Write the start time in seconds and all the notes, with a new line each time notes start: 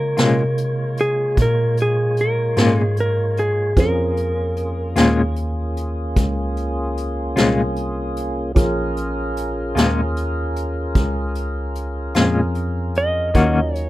Already playing: C#3 G#3 A#3 F4 A#4 C#5
0.17 A#2 C3 G#3 C#4 F4, snare, closed hi-hat
0.58 closed hi-hat
0.97 G#4, closed hi-hat
1.37 A#2, kick, closed hi-hat
1.42 A#4
1.77 closed hi-hat
1.82 G#4
2.17 closed hi-hat
2.21 A#4
2.57 G#2 A#2 G#3 C#4 F4, snare, closed hi-hat
2.80 G#4
2.97 A#4, closed hi-hat
3.37 G#4, closed hi-hat
3.76 F2 A#3 C#4 F4 G#4 A#4 C5, kick, closed hi-hat
4.17 closed hi-hat
4.57 closed hi-hat
4.96 D#2 A#2 G#3 C#4 F4, snare, closed hi-hat
5.36 closed hi-hat
5.77 closed hi-hat
6.16 C#2, kick, closed hi-hat
6.57 closed hi-hat
6.97 closed hi-hat
7.36 C2 A#2 G#3 C#4 F4, snare, closed hi-hat
7.76 closed hi-hat
8.17 closed hi-hat
8.55 A#1 C#4 F4 G#4 A#4, kick, closed hi-hat
8.97 closed hi-hat
9.37 closed hi-hat
9.75 D#2 A#2 G#3 C#4 F4, snare, closed hi-hat
10.17 closed hi-hat
10.56 closed hi-hat
10.95 C#2, kick, closed hi-hat
11.35 closed hi-hat
11.75 closed hi-hat
12.14 F2 A#2 G#3 C#4 F4, snare, closed hi-hat
12.55 closed hi-hat
12.95 D#5, closed hi-hat
13.34 D#2 D#3 F#3 A#3 C#4 D#4 F4 F#4 A#4, kick, closed hi-hat
13.75 C#5, closed hi-hat